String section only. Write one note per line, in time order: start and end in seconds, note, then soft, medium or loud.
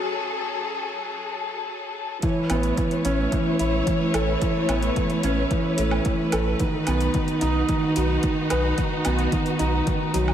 0.00 2.20 F#2 medium
0.00 2.20 F#3 medium
0.00 2.19 G#4 medium
0.00 2.19 A4 medium
2.23 6.55 A3 medium
2.23 6.56 E4 medium
2.23 10.34 B4 medium
2.23 6.56 C#5 medium
6.59 10.34 D#4 medium
6.59 10.34 F#4 medium